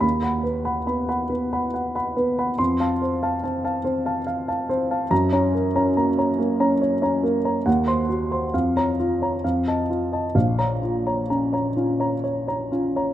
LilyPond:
<<
  \new Staff \with { instrumentName = "Grand piano" } { \time 3/4 \key f \phrygian \tempo 4 = 70 << { b''8 r2 r8 | c'''8 r2 r8 | bes''8 r2 r8 | r16 c'''16 r8. bes''16 r8. a''16 r8 |
r16 bes''16 r2 r8 | } \\ { r16 <fis'' b''>16 b'16 <fis'' b''>16 b''16 <fis'' b''>16 b'16 <fis'' b''>16 fis''16 <fis'' b''>16 b'16 <fis'' b''>16 | r16 <f'' a''>16 c''16 <f'' a''>16 a''16 <f'' a''>16 c''16 <f'' a''>16 f''16 <f'' a''>16 c''16 <f'' a''>16 | r16 <des'' bes''>16 bes'16 <des'' bes''>16 bes''16 <des'' bes''>16 bes'16 <des'' bes''>16 des''16 <des'' bes''>16 bes'16 <des'' bes''>16 | ges''16 c''16 ges'16 <c'' c'''>16 f''16 des''16 f'16 <des'' bes''>16 f''16 ees''16 f'16 <ees'' a''>16 |
f''16 des''16 f'16 <des'' bes''>16 bes''16 <des'' bes''>16 f'16 <des'' bes''>16 des''16 <des'' bes''>16 f'16 <des'' bes''>16 | } >> }
  \new Staff \with { instrumentName = "Grand piano" } { \time 3/4 \key f \phrygian dis,4 b8 b8 r8 b8 | f,4 c'8 c'8 r8 c'8 | ges,16 des'8 des'16 bes8 bes16 des'8 des'16 bes8 | ees,4 f,4 f,4 |
bes,,4 des'8 des'8 r8 des'8 | }
>>